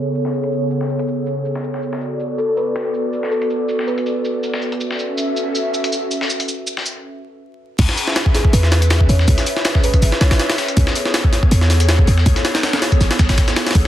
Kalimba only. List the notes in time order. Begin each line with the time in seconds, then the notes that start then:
2.38 A4
2.48 A4
2.57 B4
3.32 A4
3.87 B4
8.35 G#4
8.45 G#4
8.53 B4
9.09 C#5
9.84 B4
10.21 C#5